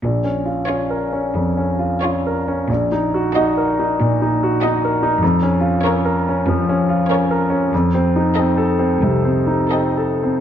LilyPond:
<<
  \new Staff \with { instrumentName = "Violin section" } { \time 4/4 \key bes \minor \tempo 4 = 93 r4 <f' des''>4 r4 <f' des''>4 | r4 <ges' ees''>4 r4 <ges' ees''>4 | r4 <bes' des''>4 r4 <bes' des''>4 | r4 <a' ees''>4 r4 <a' ees''>4 | }
  \new Staff \with { instrumentName = "Grand piano" } { \time 4/4 \key bes \minor \tuplet 3/2 { bes,,8 des'8 f'8 des'8 bes'8 des'8 f,8 des'8 f'8 des'8 bes'8 des'8 } | \tuplet 3/2 { bes,,8 ees'8 ges'8 ees'8 bes'8 ees'8 bes,8 ees'8 ges'8 ees'8 bes'8 ees'8 } | \tuplet 3/2 { f,8 des'8 f'8 des'8 bes'8 des'8 f8 des'8 f'8 des'8 bes'8 des'8 } | \tuplet 3/2 { f,8 c'8 ees'8 c'8 a'8 c'8 c8 c'8 ees'8 c'8 a'8 c'8 } | }
  \new Staff \with { instrumentName = "Cello section" } { \clef bass \time 4/4 \key bes \minor bes,4 r4 f,4 r4 | bes,4 r4 bes,4 r4 | f,4 r4 f,4 r4 | f,4 r4 c,4 r4 | }
>>